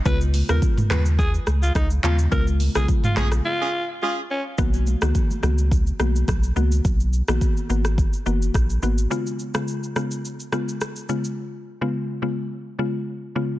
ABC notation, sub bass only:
X:1
M:4/4
L:1/16
Q:"Swing 16ths" 1/4=106
K:Dbmix
V:1 name="Sub bass" clef=bass
D,,3 E,, z2 E,,4 D,,2 D,,2 E,,2 | D,,3 C,, z2 B,,,2 z8 | C,,3 D,, z2 D,,4 C,,2 C,,2 D,,2 | C,,3 B,,, z2 A,,,3 z G,,,2 B,,,2 A,,,2 |
z16 | z16 |]